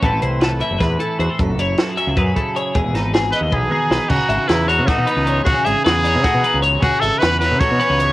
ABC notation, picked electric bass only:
X:1
M:7/8
L:1/16
Q:1/4=154
K:C#m
V:1 name="Picked electric bass" clef=bass
A,,, A,,, =C,,4- C,, F,,, E,,2 z2 E,, z | F,,, C,, F,,,2 z3 C,, F,,2 z4 | E,,, E,,, G,,,4- G,,, D,, B,,,2 z2 B,,, z | C,, z G,,, z E,,3 C, z B,, z C,,3 |
C,, z G,,, z E,,3 C, z B,, z C,,3 | C,, z G,,, z E,,3 C, z B,, z C,,3 |]